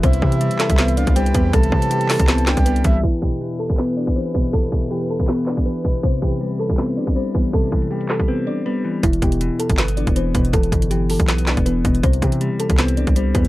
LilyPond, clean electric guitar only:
\new Staff \with { instrumentName = "Clean electric guitar" } { \clef bass \time 4/4 \key e \minor \tempo 4 = 160 c8 e8 g4 c'4 g8 e8 | c8 e8 g4 c'4 g8 e8 | e,8 b,8 e4 b4 e8 b,8 | e,8 b,8 e4 b4 e8 b,8 |
c8 e8 g4 c'4 g8 e8 | c8 e8 g4 c'4 g8 e8 | e,8 b,8 e4 b4 e8 b,8 | e,8 b,8 e4 b4 e8 b,8 |
c8 e8 g4 c'4 g8 e8 | }